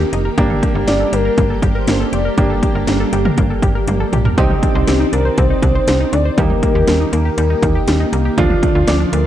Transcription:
Already playing: string machine D#3 A#3 G4, grand piano A#3 D#4 G4
0.00 synth arpeggio sound G4
0.13 fm bass F1, synth arpeggio sound D#4, closed hi-hat
0.25 synth arpeggio sound A#4
0.38 fm bass G1, string machine G3 A#3, synth arpeggio sound A#3, grand piano A#3 D4 G4, kick, closed hi-hat
0.50 synth arpeggio sound A4, mid tom
0.63 synth arpeggio sound G4, kick, closed hi-hat
0.75 fm bass G1, synth arpeggio sound A#4
0.88 fm bass G1, synth arpeggio sound A#3, soft synth lead D5, snare, closed hi-hat
1.00 synth arpeggio sound A4
1.13 fm bass G1, synth arpeggio sound G4, soft synth lead A#4, closed hi-hat
1.25 synth arpeggio sound A#4
1.38 fm bass G1, synth arpeggio sound A#3, kick, closed hi-hat
1.50 synth arpeggio sound A4
1.62 fm bass G1, synth arpeggio sound G4, kick, closed hi-hat
1.75 synth arpeggio sound A#4, soft synth lead C5
1.88 fm bass G1, synth arpeggio sound A#3, snare, closed hi-hat
2.00 synth arpeggio sound A4
2.13 fm bass F1, synth arpeggio sound G4, soft synth lead D5, closed hi-hat
2.25 synth arpeggio sound A#4
2.38 fm bass G1, synth arpeggio sound A#3, grand piano A#3 D4 G4, kick, closed hi-hat
2.50 synth arpeggio sound A4
2.63 synth arpeggio sound G4, kick, closed hi-hat
2.75 fm bass G1, synth arpeggio sound A#4
2.87 fm bass G1, synth arpeggio sound A#3, snare, closed hi-hat
3.00 synth arpeggio sound A4
3.13 fm bass G1, synth arpeggio sound G4, closed hi-hat
3.25 synth arpeggio sound A#4, mid tom
3.38 fm bass G1, synth arpeggio sound A#3, kick, closed hi-hat
3.50 synth arpeggio sound A4
3.62 fm bass G1, synth arpeggio sound G4, kick, closed hi-hat
3.75 synth arpeggio sound A#4
3.88 fm bass G1, synth arpeggio sound A#3, closed hi-hat, high tom
4.00 synth arpeggio sound A4
4.13 fm bass A#1, synth arpeggio sound G4, closed hi-hat, mid tom
4.25 synth arpeggio sound A#4, floor tom
4.38 fm bass C2, string machine D#3 C4 D5, grand piano C4 D#4 G4, synth arpeggio sound C4, kick, closed hi-hat
4.50 synth arpeggio sound D#4, mid tom
4.63 synth arpeggio sound D4, kick, closed hi-hat
4.75 fm bass C2, synth arpeggio sound C5
4.88 fm bass C2, synth arpeggio sound C4, soft synth lead G4, snare, closed hi-hat
5.00 synth arpeggio sound D#4
5.13 fm bass C2, synth arpeggio sound D4, soft synth lead A#4, closed hi-hat
5.25 synth arpeggio sound C5
5.38 fm bass C2, synth arpeggio sound C4, soft synth lead C5, kick, closed hi-hat
5.50 synth arpeggio sound D#4
5.62 fm bass C2, synth arpeggio sound D4, kick, closed hi-hat
5.75 synth arpeggio sound C5
5.88 fm bass C2, synth arpeggio sound C4, snare, closed hi-hat
6.00 synth arpeggio sound D#4
6.13 fm bass D2, synth arpeggio sound D4, soft synth lead D5, closed hi-hat
6.25 synth arpeggio sound C5
6.38 fm bass D#2, synth arpeggio sound G3, string machine A#3 G4, grand piano A#3 D#4 G4, soft synth lead A#4, kick, closed hi-hat
6.50 synth arpeggio sound D#4, mid tom
6.63 synth arpeggio sound A#3, kick, closed hi-hat
6.75 fm bass D#2, synth arpeggio sound G4
6.88 fm bass D#2, synth arpeggio sound G3, snare, closed hi-hat
7.00 synth arpeggio sound D#4
7.13 fm bass D#2, synth arpeggio sound A#3, soft synth lead A#4, closed hi-hat
7.25 synth arpeggio sound G4
7.38 fm bass D#2, synth arpeggio sound G3, closed hi-hat
7.50 synth arpeggio sound D#4
7.63 fm bass D#2, synth arpeggio sound A#3, grand piano A#3 D#4 G4, kick, closed hi-hat
7.75 synth arpeggio sound G4
7.88 fm bass D#2, synth arpeggio sound G3, snare, closed hi-hat
8.00 synth arpeggio sound D#4
8.13 fm bass C2, synth arpeggio sound A#3, closed hi-hat
8.25 synth arpeggio sound G4
8.38 fm bass D2, string machine D3 F3 F4, grand piano F3 D4 F4, synth arpeggio sound F3, kick, closed hi-hat
8.50 synth arpeggio sound D4, mid tom
8.63 synth arpeggio sound A3, kick, closed hi-hat
8.75 fm bass D2, synth arpeggio sound F4
8.88 fm bass D2, synth arpeggio sound F3, soft synth lead D5, snare, closed hi-hat
9.00 synth arpeggio sound D4
9.12 fm bass D2, synth arpeggio sound A3, soft synth lead A#4, closed hi-hat

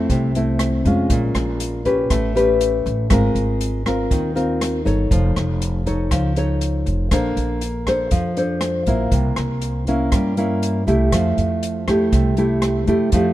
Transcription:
Already playing: nylon-string guitar A3 C4 E4
0.10 upright bass C2, nylon-string guitar C3, kick, closed hi-hat
0.35 nylon-string guitar A3 C4 E4, closed hi-hat
0.59 cross-stick, closed hi-hat
0.85 upright bass F2, nylon-string guitar G#3 C#4 F4, kick, closed hi-hat
1.10 upright bass A#1, nylon-string guitar A#2, kick, closed hi-hat
1.34 upright bass A#1, cross-stick, closed hi-hat
1.60 closed hi-hat
1.85 nylon-string guitar C#4 G4 B4, kick, closed hi-hat
2.10 upright bass A1, nylon-string guitar A3, kick, cross-stick, closed hi-hat
2.35 nylon-string guitar C#4 G4 B4, closed hi-hat
2.61 closed hi-hat
2.86 upright bass A1, kick, closed hi-hat
3.10 upright bass G#1, nylon-string guitar G#3 C4 F4 A#4, kick, cross-stick, closed hi-hat
3.35 upright bass G#1, closed hi-hat
3.61 closed hi-hat
3.86 nylon-string guitar C4 F4 A#4, kick, cross-stick, closed hi-hat
4.11 upright bass D#2, nylon-string guitar D#3, kick, closed hi-hat
4.35 nylon-string guitar C4 F4 A#4, closed hi-hat
4.61 cross-stick, closed hi-hat
4.85 upright bass G1, nylon-string guitar D#4 A4 C#5, kick, closed hi-hat
5.11 upright bass F1, nylon-string guitar F3, kick, closed hi-hat
5.36 upright bass F1, cross-stick, closed hi-hat
5.62 closed hi-hat
5.86 nylon-string guitar D#4 A4 C#5, kick, closed hi-hat
6.11 upright bass C#2, nylon-string guitar F3, kick, cross-stick, closed hi-hat
6.36 nylon-string guitar D#4 A4 C#5, closed hi-hat
6.61 closed hi-hat
6.86 upright bass F1, kick, closed hi-hat
7.11 upright bass A#1, nylon-string guitar A#3 D4 A4 C5, kick, cross-stick, closed hi-hat
7.36 upright bass A#1, closed hi-hat
7.61 closed hi-hat
7.87 nylon-string guitar D4 A4 C5, kick, cross-stick, closed hi-hat
8.11 upright bass F2, nylon-string guitar F3, kick, closed hi-hat
8.37 nylon-string guitar D4 A4 C5, closed hi-hat
8.61 cross-stick, closed hi-hat
8.86 upright bass A#1, nylon-string guitar A#3 E4, kick, closed hi-hat
9.12 upright bass C2, nylon-string guitar C3, kick, closed hi-hat
9.36 upright bass C2, cross-stick, closed hi-hat
9.61 closed hi-hat
9.87 nylon-string guitar A#3 C#4 E4, kick, closed hi-hat
10.12 upright bass G2, nylon-string guitar G3, kick, cross-stick, closed hi-hat
10.37 nylon-string guitar A#3 C#4 E4, closed hi-hat
10.63 closed hi-hat
10.87 upright bass C2, nylon-string guitar A3 E4 G4, kick, closed hi-hat
11.12 upright bass F2, nylon-string guitar F3, kick, cross-stick, closed hi-hat
11.38 upright bass F2, closed hi-hat
11.63 closed hi-hat
11.88 nylon-string guitar A3 E4 G4, kick, cross-stick, closed hi-hat
12.12 upright bass C2, nylon-string guitar C3, kick, closed hi-hat
12.37 nylon-string guitar A3 E4 G4, closed hi-hat
12.62 cross-stick, closed hi-hat
12.87 upright bass F2, nylon-string guitar A3 E4 G4, kick, closed hi-hat
13.12 upright bass F2, nylon-string guitar F3 A3 E4 G4, kick, closed hi-hat

